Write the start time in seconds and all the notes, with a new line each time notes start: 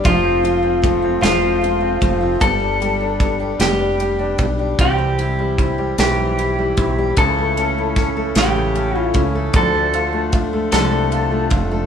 Already playing: B3 D4 G4
0.04 F1 F3 F4, kick, ride
0.23 A3 C4
0.43 F3 F4, ride
0.63 C4
0.82 F3 A3, kick, ride
1.02 C4 F4
1.21 E1 F3 F4, snare, ride
1.42 A3 C4
1.61 F3 F4, ride
1.81 C4
2.01 F1 F3 A3, kick, ride
2.21 C4 F4
2.40 G1 G3 B3 A4, kick, ride
2.60 B3 D4
2.80 G3 G4, ride
3.01 D4
3.20 G3 B3, kick, ride
3.40 D4 G4
3.59 F1 G3 B3 G4, snare, ride
3.79 B3 D4
3.99 G3 G4, ride
4.19 D4
4.38 B1 G3 B3, kick, ride
4.59 D4 G4
4.79 C2 E3 C4 G4, kick, ride
4.98 G3 C4
5.19 E4 G4, ride
5.39 G3 E4
5.58 C4 E4, kick, ride
5.78 G3 G4
5.98 B1 E3 G4, snare, ride
6.18 G3 C4
6.38 E4 G4, ride
6.59 G3 E4
6.77 B1 C4 E4, kick, ride
6.98 G3 G4
7.17 C#2 C#3 E3 A4, kick, ride
7.38 A3
7.57 C#4 A4, ride
7.78 C#4 E4
7.96 A3 C#4, kick, snare, ride
8.17 A3 A4
8.35 A1 C#3 E3 G4, snare, ride
8.56 A3
8.75 C#4 A4, ride
8.95 C#4 E4 F4
9.14 C#2 A3 C#4, kick, ride
9.34 A3 A4
9.54 D2 D3 F3 A4, kick, ride
9.74 A3
9.94 F4 A4, ride
10.13 A3 D4
10.32 A3 F4, kick, ride
10.53 A3 A4
10.72 C2 D3 F3 A4, snare, ride
10.91 A3
11.11 F4 A4, ride
11.31 A3 D4
11.50 F1 A3 F4, kick, ride
11.71 A3 A4